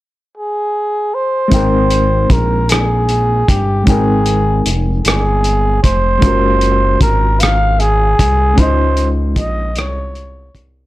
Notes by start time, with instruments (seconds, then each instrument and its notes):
0.37 flugelhorn G#4
1.15 flugelhorn C5
1.48 analog synth bass G#1, reed electric piano G#3 C4 D#4, kick, closed hi-hat
1.54 reed electric piano A#4 G5
1.90 closed hi-hat
2.30 analog synth bass A#1, flugelhorn A#4, kick, closed hi-hat
2.69 flugelhorn G#4, cross-stick, closed hi-hat
3.09 closed hi-hat
3.48 analog synth bass G1, flugelhorn G4, kick, closed hi-hat
3.83 reed electric piano G#3 C4, kick, closed hi-hat
3.87 analog synth bass G#1, reed electric piano D#4 G5, flugelhorn G#4
3.92 reed electric piano A#4
4.26 closed hi-hat
4.66 analog synth bass F1, closed hi-hat
5.05 analog synth bass G1, flugelhorn G#4, cross-stick, closed hi-hat
5.44 closed hi-hat
5.83 analog synth bass F1, flugelhorn C5, kick, closed hi-hat
6.19 analog synth bass F#1, reed electric piano G#3 C#4, kick, closed hi-hat
6.23 reed electric piano F4 F#4
6.27 reed electric piano A#4
6.61 closed hi-hat
7.01 analog synth bass G#1, flugelhorn A#4, kick, closed hi-hat
7.40 flugelhorn F5, cross-stick, closed hi-hat
7.80 flugelhorn G#4, closed hi-hat
8.19 analog synth bass C2, kick, closed hi-hat
8.54 analog synth bass C#2, reed electric piano G#3 C#4, kick, closed hi-hat
8.58 reed electric piano D#4 E4, flugelhorn C5
8.63 reed electric piano F4 D#5
8.97 closed hi-hat
9.36 analog synth bass A#1, flugelhorn D#5, kick, closed hi-hat
9.76 analog synth bass C2, flugelhorn C#5, cross-stick, closed hi-hat
10.15 closed hi-hat
10.55 analog synth bass C2, kick, closed hi-hat